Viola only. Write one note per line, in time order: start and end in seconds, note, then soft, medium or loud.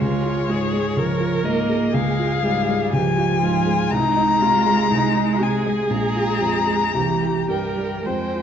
0.01 0.51 F4 soft
0.50 1.00 G#4 soft
0.98 1.94 A#4 medium
1.95 2.95 G#4 medium
2.93 3.41 G4 soft
3.42 3.94 F4 medium
3.92 4.44 D#4 medium
4.42 4.91 F4 medium
4.92 5.42 D#4 soft
5.41 6.96 G#4 medium
6.95 7.52 G4 soft
7.50 8.07 A#4 soft
8.06 8.42 C5 soft